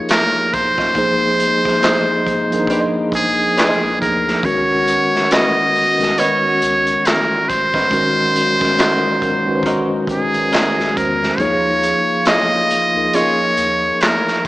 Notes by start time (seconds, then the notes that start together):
Already playing: C#3 F3 A#3 D#4 F4 G4 G#4 A#4
0.09 A#4, snare, clap, closed hi-hat
0.53 B1 C5, kick, closed hi-hat
0.78 C#4 F4 G#4 D#5, kick, snare
0.95 A#1 C3 F3 G#3 A#3 D#4 G#4 C5, kick, closed hi-hat
1.40 closed hi-hat
1.63 F3 A#3 D#4 G#4 C5, kick, snare
1.83 D#4 G#4 C5 D#5, snare, clap, closed hi-hat
2.27 G#1, kick, closed hi-hat
2.51 G#1 F3 A#3 D4 G#4 A#4, closed hi-hat
2.59 D#4
2.67 D#4 G#4 C5 D#5, kick, closed hi-hat
2.97 A#1
3.12 A#1 G#4, kick, closed hi-hat
3.57 D#4 G#4 C5 D#5, snare, clap, closed hi-hat
3.83 A#1
3.99 D2 F3 A#3 D#4 G#4 A#4, kick, closed hi-hat
4.28 snare
4.42 C#2 D#3 G#3 B3 C#4 F#4 A#4 C#5, kick, closed hi-hat
4.88 closed hi-hat
5.16 snare
5.31 C#4 F#4 B4 D#5, snare, clap, closed hi-hat
5.75 B1, open hi-hat
5.98 B1 D#3 G#3 C#4 F#4 A#4, closed hi-hat
6.03 snare
6.18 C#4 F#4 B4 C#5 D#5, closed hi-hat
6.44 C#2
6.62 C#2, closed hi-hat
6.87 closed hi-hat
7.05 A#4, snare, clap, closed hi-hat
7.49 A1 C5, kick, closed hi-hat
7.74 C#4 F#4 B4 D#5, kick, snare
7.90 G#1 A#2 D#3 F#3 G#3 C#4 D#4 F#4 A#4, kick, closed hi-hat
8.36 closed hi-hat
8.59 D#3 G#3 C#4 F#4 A#4, kick
8.63 snare
8.78 C#4 F#4 A#4 D#5, snare, clap, closed hi-hat
9.22 F#1, kick, closed hi-hat
9.46 F#1 D#3 G#3 C#4 F#4 B4
9.56 C5
9.63 G#1 C#4 F#4 A#4 D#5, kick, closed hi-hat
10.07 G#1 G#4, kick, closed hi-hat
10.34 G#1, closed hi-hat
10.52 C#4 F#4 A#4 D#5, snare, clap, closed hi-hat
10.79 A#1, snare
10.94 D#3 G#3 C#4 F#4 A#4 C5, kick, closed hi-hat
10.98 E2
11.23 snare
11.38 D#2 C#3 F3 A#3 D#4 F4 G#4 C#5, kick, closed hi-hat
11.83 closed hi-hat
12.25 C#4 F4 G#4 D#5, snare, clap, closed hi-hat
12.70 C#2, closed hi-hat
12.94 C#2 F3 A#3 D#4 G#4 A#4
13.13 C#4 F4 G#4 C#5 D#5, closed hi-hat
13.39 D#2
13.57 D#2, closed hi-hat
14.01 A#4, snare, clap, closed hi-hat
14.28 snare